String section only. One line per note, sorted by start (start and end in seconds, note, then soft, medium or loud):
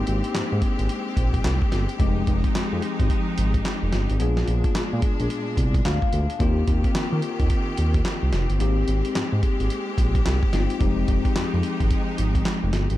0.00 1.98 G#3 medium
0.00 1.96 C4 medium
0.00 4.16 G4 medium
2.00 4.18 F3 medium
2.00 4.18 G#3 medium
2.00 4.18 D#4 medium
4.20 6.38 A#2 medium
4.20 6.38 G#3 medium
4.20 6.38 D4 medium
6.40 8.58 D#3 medium
6.40 10.77 C4 medium
6.40 8.58 G4 medium
8.60 10.79 G#3 medium
8.60 12.97 G4 medium
10.81 12.98 F3 medium
10.81 12.98 G#3 medium
10.81 12.98 D#4 medium